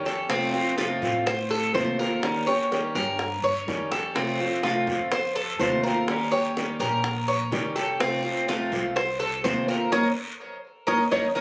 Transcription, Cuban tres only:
0.06 A4
0.30 C4
0.78 F4
1.26 C5
1.51 A4
1.75 C5
1.99 A#4
2.47 C#5
2.95 A#4
3.44 C#5
3.91 A4
4.16 C4
4.63 F4
5.12 C5
5.36 A4
5.60 C5
5.83 A#4
6.32 C#5
6.80 A#4
7.28 C#5
7.76 A4
8.00 C4
8.48 F4
8.96 C5
9.20 A4
9.44 C5
9.68 A#4
9.92 A#4 C#5 D#5
10.87 A#4 C#5 D#5
11.11 A#4 C#5 D#5
11.35 A#4 C#5 D#5

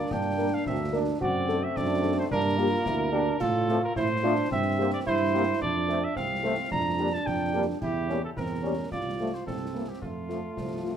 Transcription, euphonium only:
0.11 D4
0.67 C4
0.94 D4
1.20 F#4
1.75 D4
2.30 D4
2.58 F4
2.86 E4
3.12 D4
3.40 F4
3.96 E4
4.23 D4
4.50 C4
5.06 E4
5.61 D4
6.16 C4
6.71 D4
7.81 E4
8.37 C4
8.64 C#4
8.92 F4
9.46 C4
10.02 A3

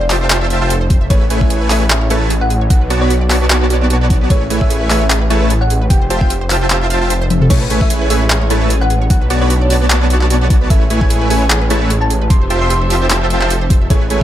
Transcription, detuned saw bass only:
Already playing: F1
1.10 A1
2.70 B1
4.30 A1
5.90 F1
7.50 A1
9.10 B1
10.70 A1
12.30 F1
13.90 A1

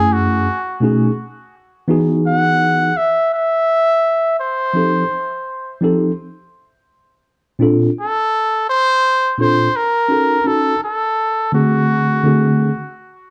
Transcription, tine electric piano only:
Already playing: F#2 A3 C#4 E4 G#4
0.80 B2 A3 C#4 D#4 F#4 G#4
1.88 E3 B3 D#4 F#4 G#4
4.73 F3 C4 D#4 G4 A4
5.81 F3 C4 D#4 G4 A4
7.59 A#2 C4 D4 F4 A4
9.38 A#2 C4 D4 F4 A4
10.09 C#4 D#4 F#4 A4
10.44 C#4 D#4 F#4 A4
11.52 D3 A3 C4 F#4 G#4
12.23 D3 A3 C4 F#4 G#4

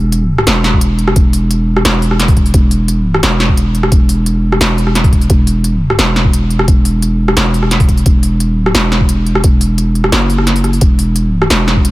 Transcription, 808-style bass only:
Already playing: E1
0.47 E1
1.16 E1
1.85 E1
2.54 E1
3.23 E1
3.92 E1
4.61 E1
5.30 E1
5.99 E1
6.68 E1
7.37 E1
8.06 E1
8.54 D#1
8.75 E1
9.44 E1
10.12 F#1
10.82 E1
11.51 E1

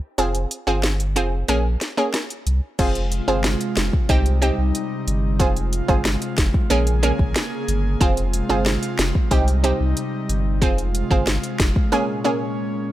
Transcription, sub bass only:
0.18 F1
0.67 G1
1.16 F1
1.49 A#1
2.46 C2
2.79 F1
3.28 G1
3.77 F1
4.09 C2
4.58 C2
5.07 G1
5.40 F1
5.89 G1
6.38 F1
6.70 A#1
7.19 A#1
7.68 G1
8.01 F1
8.50 G1
8.99 F1
9.31 C2
9.80 C2
10.29 G1
10.62 F1
11.11 G1
11.60 F1

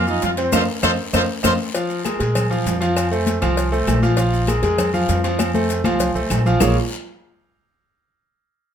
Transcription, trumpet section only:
0.09 D#4 D#5
0.24 F4 F5
0.40 C4 C5
0.54 F4 A4 C5
0.83 F4 A4 C5
1.15 F4 A4 C5
1.44 F4 A4 C5

